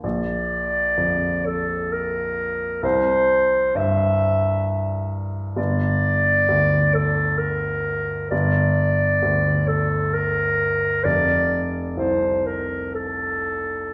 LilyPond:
<<
  \new Staff \with { instrumentName = "Clarinet" } { \time 3/4 \key g \dorian \tempo 4 = 65 d''4. a'8 bes'4 | c''4 e''4. r8 | d''4. a'8 bes'4 | d''4. a'8 bes'4 |
d''8 r8 c''8 bes'8 a'4 | }
  \new Staff \with { instrumentName = "Grand piano" } { \clef bass \time 3/4 \key g \dorian bes,,4 f,2 | c,4 g,2 | g,,4 d,2 | g,,4 d,2 |
f,,4 c,2 | }
>>